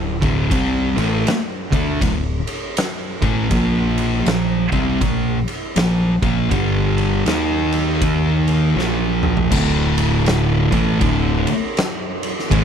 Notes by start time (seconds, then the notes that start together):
Already playing: D1 D2 A2
0.22 D1 D2 A2 D3, kick, ride
0.51 C2 C3 G3 C4, kick, ride
0.97 A1 A2 E3 A3, ride
1.27 snare, ride
1.72 D2 D3 A3 D4, kick, ride
2.01 D1 D2 A2, kick, ride
2.47 ride
2.77 snare, ride
3.22 A1 A2 E3 A3, kick, ride
3.51 A#1 A#2 F3 A#3, kick, ride
3.98 ride
4.26 A#1 A#2 F3, snare, ride
4.72 C2 C3 G3 C4, kick, ride
5.01 A#1 A#2 F3, kick, ride
5.48 ride
5.76 A#1 A#2 F3, snare, ride
6.22 A#1 A#2 F3 A#3, kick, ride
6.51 G1 G2 D3 G3, kick, ride
6.98 ride
7.26 D#2 D#3 A#3 D#4, snare, ride
7.72 ride
8.02 kick, ride
8.48 ride
8.76 A#1 A#2 F3 A#3, snare
9.23 mid tom
9.37 floor tom
9.51 D1 D2 A2 D3, kick, crash
9.98 ride
10.26 snare, ride
10.72 A1 A2 E3 A3, kick, ride
11.01 D1 D2 A2 D3, kick, ride
11.47 ride
11.77 snare, ride
12.23 ride
12.39 snare
12.51 G#1 G#2 D#3 G#3, kick, ride